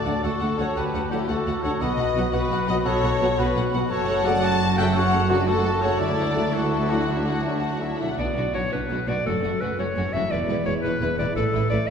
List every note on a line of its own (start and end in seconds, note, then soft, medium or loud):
0.00 0.77 D3 soft
0.00 0.60 D4 soft
0.00 0.19 F#4 soft
0.00 0.23 A4 medium
0.00 0.24 A4 soft
0.00 0.22 D5 medium
0.00 0.23 D5 medium
0.00 0.20 A5 soft
0.05 0.13 D2 soft
0.05 0.14 D2 soft
0.05 0.12 D3 soft
0.05 0.12 F#3 soft
0.05 0.12 A3 soft
0.05 0.12 A3 medium
0.05 0.12 D4 medium
0.05 0.12 F#4 soft
0.05 0.41 F#4 soft
0.05 0.12 F#5 soft
0.22 0.31 D2 soft
0.22 0.31 D2 medium
0.22 0.31 A3 soft
0.22 1.26 F#4 soft
0.22 0.31 F#4 soft
0.22 0.60 F#4 medium
0.22 0.58 A4 medium
0.22 0.59 A4 medium
0.22 1.30 A4 soft
0.22 0.31 F#5 soft
0.22 1.27 A5 medium
0.40 0.48 D2 soft
0.40 0.48 D2 medium
0.40 0.49 A3 soft
0.40 0.49 F#4 soft
0.40 0.47 F#5 soft
0.56 0.66 D2 soft
0.56 0.63 D3 soft
0.56 0.64 F#3 soft
0.56 0.66 A3 soft
0.56 0.65 A3 soft
0.56 0.64 D4 medium
0.56 0.66 F#4 soft
0.56 0.75 A4 medium
0.56 0.77 C#5 medium
0.56 0.76 C#5 medium
0.56 0.66 F#5 soft
0.76 0.83 D2 medium
0.76 1.84 D3 medium
0.76 0.83 A3 medium
0.76 0.83 F#4 soft
0.76 1.10 G4 medium
0.76 1.11 B4 medium
0.76 1.12 B4 medium
0.76 0.83 F#5 soft
0.93 1.01 D2 soft
0.93 1.00 A3 soft
0.93 1.84 A3 soft
0.93 1.00 F#4 soft
0.93 1.01 F#5 soft
1.10 1.18 D2 soft
1.10 1.19 D2 soft
1.10 1.17 D3 soft
1.10 1.17 F#3 medium
1.10 1.17 A3 medium
1.10 1.18 A3 soft
1.10 1.17 D4 soft
1.10 1.30 E4 medium
1.10 1.18 F#4 soft
1.10 1.28 G4 medium
1.10 1.19 G4 soft
1.10 1.19 F#5 soft
1.14 1.48 F#4 soft
1.28 1.35 D2 medium
1.28 1.36 D2 medium
1.28 1.36 A3 soft
1.28 1.63 F#4 medium
1.28 1.36 F#4 soft
1.28 1.81 F#4 soft
1.28 1.64 A4 medium
1.28 1.36 F#5 soft
1.28 1.82 A5 soft
1.46 1.53 D2 soft
1.46 1.54 D2 medium
1.46 1.54 A3 soft
1.46 1.54 F#4 soft
1.46 1.98 F#4 soft
1.46 1.54 F#5 soft
1.63 1.70 D2 soft
1.63 1.71 D2 medium
1.63 1.70 D3 medium
1.63 1.70 F#3 soft
1.63 1.70 A3 medium
1.63 1.70 A3 soft
1.63 1.70 D4 medium
1.63 1.84 D4 soft
1.63 1.71 F#4 soft
1.63 1.83 A4 medium
1.63 1.84 C#5 medium
1.63 1.70 C#5 medium
1.63 1.71 F#5 medium
1.80 1.88 B1 medium
1.80 1.88 B2 medium
1.80 2.85 B2 medium
1.80 1.88 B3 soft
1.80 1.88 F#4 medium
1.80 2.33 F#4 medium
1.80 2.32 B4 medium
1.80 2.36 D#5 medium
1.80 2.33 D#5 medium
1.80 1.88 F#5 medium
1.80 2.33 B5 soft
1.97 2.05 B1 medium
1.97 2.05 B2 soft
1.97 2.06 B3 soft
1.97 2.06 F#4 soft
1.97 2.49 F#4 soft
1.97 2.05 F#5 soft
2.15 2.22 B1 soft
2.15 2.23 B2 soft
2.15 2.23 B2 medium
2.15 2.67 F#3 soft
2.15 2.23 F#3 medium
2.15 2.22 B3 medium
2.15 2.23 B3 soft
2.15 2.22 F#4 medium
2.15 2.23 F#4 soft
2.15 2.24 F#5 soft
2.32 2.39 B1 medium
2.32 2.40 B2 medium
2.32 2.40 B3 medium
2.32 2.70 F#4 medium
2.32 2.40 F#4 soft
2.32 3.37 F#4 medium
2.32 2.68 B4 medium
2.32 3.39 B4 soft
2.32 2.69 B4 medium
2.32 2.40 F#5 medium
2.32 3.14 B5 medium
2.50 2.57 B1 medium
2.50 2.58 B2 medium
2.50 2.58 B3 soft
2.50 2.58 F#4 soft
2.50 2.58 F#5 medium
2.66 2.74 B1 medium
2.66 2.74 B2 medium
2.66 2.75 B2 medium
2.66 3.21 F#3 medium
2.66 2.74 F#3 medium
2.66 2.75 B3 soft
2.66 2.75 F#4 soft
2.66 2.76 F#4 medium
2.66 2.84 B4 medium
2.66 2.75 D#5 medium
2.66 2.77 D#5 medium
2.66 2.75 F#5 medium
2.71 2.77 B3 medium
2.85 2.93 B1 medium
2.85 2.92 B2 medium
2.85 3.92 B2 medium
2.85 2.93 B3 medium
2.85 2.92 F#4 medium
2.85 3.37 A4 medium
2.85 3.37 C#5 medium
2.85 3.40 C#5 medium
2.85 2.92 F#5 medium
3.03 3.10 B1 medium
3.03 3.10 B2 medium
3.03 3.11 B3 medium
3.03 3.10 F#4 medium
3.03 3.11 F#5 medium
3.19 3.28 B1 medium
3.19 3.27 B2 medium
3.19 3.28 B2 medium
3.19 3.27 F#3 medium
3.19 3.74 F#3 soft
3.19 3.26 B3 medium
3.19 3.28 B3 soft
3.19 3.26 F#4 medium
3.19 3.28 F#4 medium
3.19 3.29 F#5 medium
3.37 3.45 B1 medium
3.37 3.45 B2 medium
3.37 3.46 B3 medium
3.37 3.89 F#4 medium
3.37 3.55 F#4 medium
3.37 3.46 F#4 medium
3.37 3.56 B4 medium
3.37 3.93 B4 medium
3.37 3.46 F#5 medium
3.37 3.92 B5 medium
3.56 3.63 B1 medium
3.56 3.63 B2 medium
3.56 3.63 B3 soft
3.56 3.63 F#4 soft
3.56 4.09 F#4 medium
3.56 3.63 F#5 soft
3.70 3.80 B1 medium
3.70 3.80 B2 medium
3.70 3.79 F#3 medium
3.70 3.77 B3 medium
3.70 3.80 B3 soft
3.70 3.77 F#4 medium
3.70 3.80 F#4 medium
3.70 3.80 F#5 medium
3.75 7.65 F#3 medium
3.89 5.97 F#1 medium
3.89 5.97 F#2 medium
3.89 4.95 F#2 medium
3.89 4.07 F#3 medium
3.89 4.42 F#4 medium
3.89 4.07 F#4 medium
3.89 4.28 A4 medium
3.89 4.26 C#5 medium
3.89 4.23 C#5 medium
3.89 4.06 A5 medium
3.89 4.42 A5 medium
4.07 4.26 A3 medium
4.07 4.62 F#4 medium
4.07 4.26 A4 medium
4.07 4.25 F#5 medium
4.23 4.31 C#3 medium
4.23 4.79 C#3 soft
4.23 4.30 F#3 medium
4.23 4.43 F#3 medium
4.23 4.31 A3 medium
4.23 4.43 F#4 medium
4.23 4.31 F#4 medium
4.23 4.43 D5 medium
4.23 4.40 F#5 medium
4.23 4.43 F#5 loud
4.23 4.43 A5 medium
4.41 4.60 A3 medium
4.41 4.94 F#4 medium
4.41 4.60 A4 medium
4.41 4.60 F#5 medium
4.41 4.79 F#5 medium
4.41 4.76 A5 medium
4.41 4.94 A5 medium
4.41 4.79 A5 loud
4.61 4.77 F#3 medium
4.61 4.77 F#4 medium
4.61 4.77 A5 medium
4.77 4.85 C#3 medium
4.77 5.30 C#3 soft
4.77 4.84 F#3 medium
4.77 4.95 A3 medium
4.77 4.83 A3 medium
4.77 4.84 F#4 medium
4.77 4.95 A4 medium
4.77 4.95 E5 medium
4.77 4.96 F#5 medium
4.77 4.86 G5 medium
4.77 4.95 G5 medium
4.94 6.02 F#2 medium
4.94 5.12 F#3 medium
4.94 5.12 F#4 medium
4.94 5.46 F#4 medium
4.94 5.32 C#5 medium
4.94 5.29 F#5 medium
4.94 5.30 F#5 medium
4.94 5.47 A5 medium
4.94 5.13 A5 medium
5.12 5.30 A3 medium
5.12 5.64 F#4 soft
5.12 5.30 A4 medium
5.12 5.30 F#5 medium
5.29 5.36 C#3 medium
5.29 5.81 C#3 soft
5.29 5.46 F#3 medium
5.29 5.37 F#3 medium
5.29 5.35 A3 medium
5.29 5.50 D4 medium
5.29 5.36 F#4 medium
5.29 5.49 F#4 medium
5.29 5.46 F#4 medium
5.29 5.48 F#4 medium
5.29 5.47 A5 medium
5.47 5.65 A3 medium
5.47 6.02 F#4 medium
5.47 5.84 F#4 medium
5.47 5.84 A4 medium
5.47 5.65 A4 medium
5.47 5.82 A4 medium
5.47 5.65 F#5 medium
5.47 6.00 A5 medium
5.64 5.82 F#3 medium
5.64 5.82 F#4 soft
5.64 6.35 F#4 medium
5.64 5.83 A5 medium
5.82 6.02 C#3 medium
5.82 5.89 C#3 medium
5.82 5.89 F#3 medium
5.82 6.00 A3 soft
5.82 5.89 A3 medium
5.82 5.89 F#4 medium
5.82 6.00 A4 soft
5.82 6.01 A4 medium
5.82 6.01 C#5 medium
5.82 6.00 C#5 medium
5.82 6.01 F#5 medium
5.99 8.01 D2 medium
5.99 7.08 D3 medium
5.99 6.17 F#3 medium
5.99 6.36 E4 medium
5.99 6.17 E4 medium
5.99 6.54 A4 medium
5.99 6.54 D5 medium
5.99 6.55 D5 medium
5.99 6.17 E5 medium
5.99 6.35 A5 medium
6.18 6.37 A3 medium
6.18 6.37 D4 medium
6.18 6.89 E4 medium
6.18 6.38 F#5 medium
6.36 6.43 D3 medium
6.36 6.55 F#3 medium
6.36 6.43 F#3 medium
6.36 6.42 A3 medium
6.36 6.54 E4 medium
6.36 6.43 E4 medium
6.36 6.72 F#4 soft
6.36 6.55 E5 soft
6.53 6.72 A3 soft
6.53 6.72 D4 medium
6.53 7.05 E4 medium
6.53 6.90 F#4 medium
6.53 6.91 A4 medium
6.53 7.63 A4 soft
6.53 6.72 F#5 medium
6.53 7.05 A5 medium
6.72 6.89 F#3 soft
6.72 6.89 E4 soft
6.72 6.89 E5 soft
6.89 6.97 D3 medium
6.89 6.97 F#3 medium
6.89 7.09 A3 soft
6.89 6.97 A3 medium
6.89 7.09 D4 soft
6.89 6.99 D4 medium
6.89 8.00 E4 soft
6.89 6.98 E4 medium
6.89 7.08 F#4 medium
6.89 7.07 F#4 medium
6.89 7.09 F#5 medium
7.08 8.20 D3 soft
7.08 7.27 F#3 soft
7.08 7.99 D4 medium
7.08 7.98 E4 medium
7.08 7.27 E4 soft
7.08 7.98 F#4 medium
7.08 7.99 F#4 medium
7.08 7.27 E5 medium
7.08 7.98 A5 medium
7.25 7.44 A3 soft
7.25 8.20 A3 soft
7.25 7.45 D4 soft
7.25 7.45 F#5 soft
7.44 7.51 D3 medium
7.44 7.62 F#3 soft
7.44 7.51 F#3 medium
7.44 7.52 A3 soft
7.44 7.62 E4 soft
7.44 7.53 E4 medium
7.44 7.63 E5 soft
7.62 7.81 A3 soft
7.62 7.81 D4 soft
7.62 7.81 F#5 medium
7.80 8.00 F#3 soft
7.80 7.99 E4 soft
7.80 8.09 F#4 soft
7.80 7.99 E5 soft
7.96 8.06 D3 soft
7.96 8.06 F#3 medium
7.96 8.18 A3 soft
7.96 8.06 A3 soft
7.96 8.18 D4 soft
7.96 8.06 E4 medium
7.96 8.09 E5 medium
7.96 8.17 F#5 soft
8.01 9.18 B2 soft
8.01 8.20 E4 soft
8.05 9.20 D4 soft
8.10 9.16 F#4 soft
8.15 8.26 B1 medium
8.15 8.26 B2 medium
8.15 8.25 B3 medium
8.15 8.26 D4 soft
8.15 8.25 F#4 medium
8.15 9.25 B4 soft
8.15 8.54 D5 medium
8.34 8.44 B1 medium
8.34 8.45 B2 soft
8.34 8.42 B3 soft
8.34 8.45 D4 soft
8.34 8.44 F#4 medium
8.53 8.63 B1 medium
8.53 8.62 B2 medium
8.53 8.60 B3 soft
8.53 8.62 D4 soft
8.53 8.61 F#4 soft
8.53 8.72 C#5 medium
8.71 8.80 B1 medium
8.71 8.80 B2 medium
8.71 8.79 B3 soft
8.71 8.80 D4 soft
8.71 8.78 F#4 medium
8.71 9.10 B4 medium
8.88 8.98 B1 medium
8.88 8.98 B2 medium
8.88 8.96 B3 soft
8.88 8.97 D4 soft
8.88 8.99 F#4 soft
9.06 9.15 B1 medium
9.06 10.23 F#2 soft
9.06 9.15 B2 soft
9.06 9.14 B3 soft
9.06 9.14 D4 soft
9.06 9.15 F#4 medium
9.06 9.26 D5 medium
9.13 10.26 C#4 soft
9.17 10.28 F#4 soft
9.22 9.31 A3 medium
9.22 9.32 C#4 soft
9.22 10.30 A4 soft
9.26 9.34 F#1 medium
9.26 9.33 F#2 medium
9.26 9.33 F#4 soft
9.26 9.62 A4 medium
9.40 9.48 A3 soft
9.40 9.48 C#4 medium
9.44 9.51 F#1 medium
9.44 9.51 F#2 soft
9.44 9.51 F#4 soft
9.59 9.69 F#1 soft
9.59 9.68 F#2 soft
9.59 9.66 A3 soft
9.59 9.67 C#4 soft
9.59 9.69 F#4 soft
9.59 9.78 B4 medium
9.77 9.87 F#1 medium
9.77 9.85 F#2 medium
9.77 9.84 A3 soft
9.77 9.86 C#4 medium
9.77 9.86 F#4 medium
9.77 10.14 C#5 medium
9.94 10.03 F#2 medium
9.94 10.01 A3 soft
9.94 10.03 C#4 medium
9.94 10.04 F#4 medium
9.98 10.05 F#1 medium
10.12 10.21 F#1 medium
10.12 11.29 E2 medium
10.12 10.21 F#2 medium
10.12 10.19 A3 soft
10.12 10.22 C#4 soft
10.12 10.22 F#4 medium
10.12 10.32 E5 medium
10.18 11.21 E4 soft
10.22 11.33 G#4 soft
10.29 10.39 E1 medium
10.29 10.38 E2 medium
10.29 10.37 G#3 medium
10.29 10.38 E4 soft
10.29 10.39 B4 medium
10.29 10.65 D5 medium
10.47 10.56 E1 medium
10.47 10.56 E2 medium
10.47 10.54 G#3 medium
10.47 10.56 E4 soft
10.47 10.56 B4 soft
10.65 10.74 E1 soft
10.65 10.74 E2 medium
10.65 10.72 G#3 medium
10.65 10.73 E4 medium
10.65 10.73 B4 medium
10.65 10.74 C#5 medium
10.82 10.91 E1 medium
10.82 10.92 E2 medium
10.82 10.89 G#3 soft
10.82 10.91 E4 medium
10.82 11.17 B4 medium
10.82 10.92 B4 medium
11.00 11.08 E1 medium
11.00 11.09 E2 medium
11.00 11.07 G#3 soft
11.00 11.09 E4 medium
11.00 11.09 B4 medium
11.18 11.25 E1 medium
11.18 11.26 E2 medium
11.18 11.90 A2 medium
11.18 11.25 G#3 soft
11.18 11.26 E4 medium
11.18 11.26 B4 medium
11.18 11.35 D5 medium
11.23 11.90 E4 soft
11.27 11.90 A4 soft
11.31 11.90 B4 soft
11.36 11.43 A1 medium
11.36 11.43 A2 medium
11.36 11.44 A3 medium
11.36 11.43 E4 medium
11.36 11.69 A4 medium
11.36 11.44 B4 medium
11.53 11.61 A1 medium
11.53 11.61 A2 soft
11.53 11.60 A3 medium
11.53 11.60 E4 medium
11.53 11.62 B4 medium
11.70 11.78 A1 medium
11.70 11.78 A2 medium
11.70 11.78 A3 medium
11.70 11.79 E4 medium
11.70 11.77 B4 medium
11.70 11.88 D5 loud
11.87 11.90 E5 medium